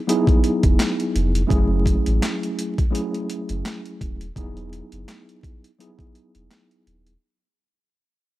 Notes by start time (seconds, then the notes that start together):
0.07 F#3 B3 D#4 E4 G#4, closed hi-hat
0.27 kick, closed hi-hat
0.44 closed hi-hat
0.63 E1, kick, closed hi-hat
0.80 snare, clap, closed hi-hat
1.00 closed hi-hat
1.15 F1, closed hi-hat
1.35 closed hi-hat
1.47 F#1 F#3 A3 C#4 E4 G#4, kick
1.51 closed hi-hat
1.86 kick, closed hi-hat
2.06 A1, closed hi-hat
2.23 snare, clap, closed hi-hat
2.43 closed hi-hat
2.59 closed hi-hat
2.78 kick, closed hi-hat
2.90 F#3 A3 C#4 E4 G#4
2.95 closed hi-hat
3.14 closed hi-hat
3.30 closed hi-hat
3.49 F#1, closed hi-hat
3.66 snare, clap, closed hi-hat
3.86 closed hi-hat
4.01 D#1, kick, closed hi-hat
4.21 closed hi-hat
4.36 E1 F#3 B3 D#4 E4 G#4, kick, closed hi-hat
4.57 closed hi-hat
4.73 closed hi-hat
4.92 F#1, closed hi-hat
5.08 snare, clap, closed hi-hat
5.29 closed hi-hat
5.43 kick, closed hi-hat
5.64 closed hi-hat
5.79 F#3 B3 D#4 E4 G#4, closed hi-hat
5.99 kick, closed hi-hat
6.15 closed hi-hat
6.35 E1, closed hi-hat
6.51 snare, clap, closed hi-hat
6.71 closed hi-hat
6.87 D#1, closed hi-hat
7.07 closed hi-hat